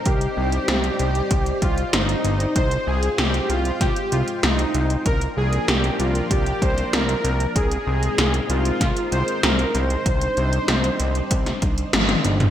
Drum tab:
HH |xx-xxxxxxxxxxxxx|xx-xxxxxxxxxxxxx|xx-xxxxxxxxxxxxx|xx-xxxxxxxxxxxxx|
SD |----o-------o---|----o---o---o---|----o-------o---|----o---o---o---|
T1 |----------------|----------------|----------------|----------------|
T2 |----------------|----------------|----------------|----------------|
BD |o-------o-o-----|o-------o-------|o-------o-o-----|o-------o-------|

HH |xxxxxxxxxxxxxxxx|
SD |----o----o--o---|
T1 |------------oo--|
T2 |---------------o|
BD |o-------o-o-----|